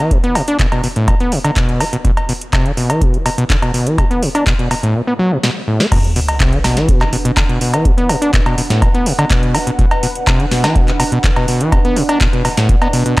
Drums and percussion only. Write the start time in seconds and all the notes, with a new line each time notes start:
0.11 kick, closed hi-hat
0.24 closed hi-hat
0.35 open hi-hat, cowbell
0.48 closed hi-hat
0.59 kick, clap, closed hi-hat
0.72 closed hi-hat, cowbell
0.84 open hi-hat
0.96 closed hi-hat
1.08 kick, closed hi-hat, cowbell
1.20 closed hi-hat
1.32 open hi-hat
1.45 closed hi-hat, cowbell
1.56 kick, clap, closed hi-hat
1.69 closed hi-hat
1.80 open hi-hat, cowbell
1.93 closed hi-hat
2.05 kick, closed hi-hat
2.17 closed hi-hat, cowbell
2.29 open hi-hat
2.41 closed hi-hat
2.53 kick, clap, closed hi-hat, cowbell
2.66 closed hi-hat
2.77 open hi-hat
2.90 closed hi-hat, cowbell
3.01 kick, closed hi-hat
3.14 closed hi-hat
3.26 open hi-hat, cowbell
3.38 closed hi-hat
3.50 kick, clap, closed hi-hat
3.62 closed hi-hat, cowbell
3.74 open hi-hat
3.87 closed hi-hat
3.98 kick, closed hi-hat, cowbell
4.11 closed hi-hat
4.23 open hi-hat
4.35 closed hi-hat, cowbell
4.46 kick, clap, closed hi-hat
4.59 closed hi-hat
4.71 open hi-hat, cowbell
4.83 closed hi-hat
5.43 snare
5.80 snare
5.92 kick, closed hi-hat, crash, cowbell
6.04 closed hi-hat
6.16 open hi-hat
6.28 closed hi-hat, cowbell
6.40 kick, clap, closed hi-hat
6.53 closed hi-hat
6.64 snare, open hi-hat, cowbell
6.77 snare, closed hi-hat
6.88 kick, closed hi-hat
7.01 clap, closed hi-hat, cowbell
7.13 open hi-hat
7.25 closed hi-hat
7.37 kick, clap, closed hi-hat, cowbell
7.49 closed hi-hat
7.61 open hi-hat
7.74 closed hi-hat, cowbell
7.85 kick, closed hi-hat
7.98 closed hi-hat
8.09 open hi-hat, cowbell
8.22 closed hi-hat
8.34 kick, clap, closed hi-hat
8.46 closed hi-hat, cowbell
8.58 open hi-hat
8.70 snare, closed hi-hat
8.82 kick, closed hi-hat, cowbell
8.95 closed hi-hat
9.06 open hi-hat
9.19 closed hi-hat, cowbell
9.30 kick, clap, closed hi-hat
9.43 closed hi-hat
9.55 open hi-hat, cowbell
9.67 closed hi-hat
9.79 kick, closed hi-hat
9.91 closed hi-hat, cowbell
10.03 open hi-hat
10.15 closed hi-hat
10.27 kick, clap, closed hi-hat, cowbell
10.40 closed hi-hat
10.51 snare, open hi-hat
10.64 snare, closed hi-hat, cowbell
10.75 kick, closed hi-hat
10.88 clap, closed hi-hat
11.00 open hi-hat, cowbell
11.12 closed hi-hat
11.24 kick, clap, closed hi-hat
11.36 closed hi-hat, cowbell
11.48 open hi-hat
11.61 closed hi-hat
11.72 kick, closed hi-hat, cowbell
11.85 closed hi-hat
11.96 open hi-hat
12.09 closed hi-hat, cowbell
12.21 kick, clap, closed hi-hat
12.33 closed hi-hat
12.45 open hi-hat, cowbell
12.57 snare, closed hi-hat
12.69 kick, closed hi-hat
12.82 closed hi-hat, cowbell
12.93 open hi-hat
13.06 closed hi-hat